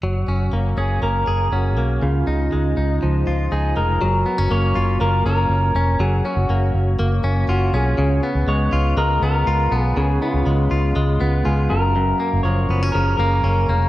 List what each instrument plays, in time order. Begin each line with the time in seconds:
0.03 fingered electric bass F#1, clean electric guitar F#3
0.28 fingered electric bass F#1, clean electric guitar C#4
0.53 fingered electric bass F#1, clean electric guitar A#3
0.77 fingered electric bass F#1, clean electric guitar C#4 G#4
1.02 fingered electric bass F#1, clean electric guitar A#3 A#4
1.27 fingered electric bass F#1, clean electric guitar G#4
1.52 fingered electric bass F#1, clean electric guitar C#4 F#4
1.77 fingered electric bass B1, clean electric guitar A#3
2.02 fingered electric bass C#2, clean electric guitar C#3 F4
2.27 fingered electric bass C#2, clean electric guitar D#4
2.52 fingered electric bass C#2, clean electric guitar G#3
2.77 fingered electric bass C#2, clean electric guitar D#4
3.03 fingered electric bass C#2, clean electric guitar F3
3.27 fingered electric bass C#2, clean electric guitar F4
3.52 fingered electric bass C#2, clean electric guitar D#4 G#4
3.76 fingered electric bass F1, clean electric guitar G#3 A#4
4.01 fingered electric bass F#1, clean electric guitar F#3
4.26 clean electric guitar B3
4.38 fingered electric bass F#1, clean electric guitar C#4
4.51 fingered electric bass F#1, clean electric guitar A#3 C#5
4.75 fingered electric bass F#1, clean electric guitar F4
5.01 fingered electric bass F#1, clean electric guitar A#3 A#4
5.26 fingered electric bass F#1, clean electric guitar C#4 A#4
5.49 fingered electric bass F#1
5.75 fingered electric bass F1, clean electric guitar C#4
6.00 fingered electric bass F#1, clean electric guitar F#3 G#4
6.25 clean electric guitar C#4 F#4
6.37 fingered electric bass F#1
6.49 fingered electric bass F#1, clean electric guitar A#3
6.74 fingered electric bass F#1
6.99 fingered electric bass F#1, clean electric guitar A#3
7.24 fingered electric bass F#1, clean electric guitar C#4
7.48 fingered electric bass F#1, clean electric guitar F4 F#4
7.73 fingered electric bass B1, clean electric guitar C#4 G#4
7.98 fingered electric bass C#2, clean electric guitar C#3
8.23 clean electric guitar B3
8.35 fingered electric bass C#2
8.47 fingered electric bass C#2, clean electric guitar G#3 C#5
8.72 fingered electric bass C#2, clean electric guitar F4
8.97 fingered electric bass C#2, clean electric guitar G#3 A#4
9.22 fingered electric bass C#2, clean electric guitar B3 A#4
9.47 fingered electric bass C#2, clean electric guitar F4
9.72 fingered electric bass B1, clean electric guitar B3
9.80 clean electric guitar G#4
9.97 fingered electric bass C#2, clean electric guitar C#3 G#4
10.22 clean electric guitar B3 F4
10.34 fingered electric bass C#2
10.46 fingered electric bass C#2, clean electric guitar G#3
10.71 fingered electric bass C#2, clean electric guitar F4
10.96 fingered electric bass C#2, clean electric guitar G#3
11.21 fingered electric bass C#2, clean electric guitar B3
11.45 fingered electric bass C#2, clean electric guitar F4 G#4
11.70 fingered electric bass F#1, clean electric guitar F#2 A#4
11.96 clean electric guitar F#2
12.20 clean electric guitar A#3
12.33 fingered electric bass F#1
12.43 fingered electric bass F#1, clean electric guitar F3 C#5
12.69 fingered electric bass F#1, clean electric guitar B3
12.83 clean electric guitar C#4
12.92 fingered electric bass F#1, clean electric guitar C#3 A#4
13.17 fingered electric bass F#1, clean electric guitar A#3 A#4
13.43 fingered electric bass F#1, clean electric guitar C#4
13.69 fingered electric bass F1, clean electric guitar A#3